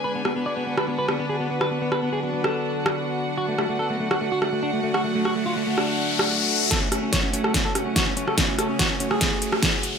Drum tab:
HH |----------------|----------------|----------------|----------------|
SD |--r----r--r----r|--r----r---r----|--r----r--r----r|--r----r---r----|
BD |----------------|----------------|----------------|----------------|

HH |x-x-x-x-x-x-x-x-|x-x-x-x-x-x-x-x-|
SD |o-r-o--ro-r-o--r|o-r-o--ro--ro---|
BD |o---o---o---o---|o---o---o---o---|